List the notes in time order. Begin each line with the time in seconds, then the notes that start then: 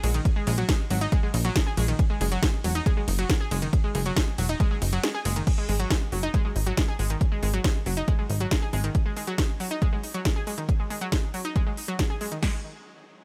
0.03 A#1 G#3, open hi-hat, ride
0.14 D#3, closed hi-hat
0.25 kick, closed hi-hat
0.36 G#3
0.47 A#1 G#3, open hi-hat, ride
0.58 F#3, closed hi-hat
0.69 G#3, kick, snare, closed hi-hat
0.90 G#1 F#3, open hi-hat, ride
1.01 D#4, closed hi-hat
1.12 G#3, kick, closed hi-hat
1.23 G#3
1.34 A#1, open hi-hat, ride
1.45 F#3, closed hi-hat
1.56 G#3, kick, snare, closed hi-hat
1.67 G#4
1.77 A#1 G#3, open hi-hat, ride
1.88 D#3, closed hi-hat
1.99 kick, closed hi-hat
2.10 G#3
2.21 F#1 G#3, open hi-hat, ride
2.32 F#3, closed hi-hat
2.43 G#3, kick, snare, closed hi-hat
2.64 E1 F#3, open hi-hat, ride
2.75 D#4, closed hi-hat
2.86 G#3, kick, closed hi-hat
2.97 G#3
3.08 F#1, open hi-hat, ride
3.19 F#3, closed hi-hat
3.30 G#3, kick, snare, closed hi-hat
3.40 G#4
3.51 F#1 G#3, open hi-hat, ride
3.62 D#3, closed hi-hat
3.73 kick, closed hi-hat
3.84 G#3
3.95 F#1 G#3, open hi-hat, ride
4.06 F#3, closed hi-hat
4.17 G#3, kick, snare, closed hi-hat
4.38 E1 F#3, open hi-hat, ride
4.49 D#4, closed hi-hat
4.60 G#3, kick, closed hi-hat
4.71 G#3
4.82 F#1, open hi-hat, ride
4.93 F#3, closed hi-hat
5.04 G#3, snare, closed hi-hat
5.14 G#4
5.25 F#1 G#3, open hi-hat, ride
5.36 D#3, closed hi-hat
5.47 kick, closed hi-hat, crash
5.58 G#3
5.69 G#1 G#3, open hi-hat
5.80 F#3, closed hi-hat
5.90 G#3, kick, snare, closed hi-hat
6.12 F#1 F#3, open hi-hat
6.23 D#4, closed hi-hat
6.34 G#3, kick, closed hi-hat
6.45 G#3
6.56 G#1, open hi-hat
6.67 F#3, closed hi-hat
6.77 G#3, kick, snare, closed hi-hat
6.88 G#4
6.99 G#1 G#3, open hi-hat
7.10 D#3, closed hi-hat
7.21 kick, closed hi-hat
7.32 G#3
7.43 G#1 G#3, open hi-hat
7.54 F#3, closed hi-hat
7.64 G#3, kick, snare, closed hi-hat
7.86 F#1 F#3, open hi-hat
7.97 D#4, closed hi-hat
8.08 G#3, kick, closed hi-hat
8.19 G#3
8.30 G#1, open hi-hat
8.40 F#3, closed hi-hat
8.51 G#3, kick, snare, closed hi-hat
8.62 G#4
8.73 G#1 G#3, open hi-hat
8.84 D#3, closed hi-hat
8.95 kick, closed hi-hat
9.06 G#3
9.17 G#3, open hi-hat
9.27 F#3, closed hi-hat
9.38 G#3, kick, snare, closed hi-hat
9.60 F#3, open hi-hat
9.71 D#4, closed hi-hat
9.82 G#3, kick, closed hi-hat
9.93 G#3
10.03 open hi-hat
10.14 F#3, closed hi-hat
10.25 G#3, kick, snare, closed hi-hat
10.36 G#4
10.47 G#3, open hi-hat
10.58 D#3, closed hi-hat
10.69 kick, closed hi-hat
10.80 G#3
10.90 G#3, open hi-hat
11.01 F#3, closed hi-hat
11.12 G#3, kick, snare, closed hi-hat
11.34 F#3, open hi-hat
11.45 D#4, closed hi-hat
11.56 G#3, kick, closed hi-hat
11.67 G#3
11.77 open hi-hat
11.88 F#3, closed hi-hat
11.99 G#3, kick, snare, closed hi-hat
12.10 G#4
12.21 G#3, open hi-hat
12.32 D#3, closed hi-hat
12.43 G#3, kick, snare, crash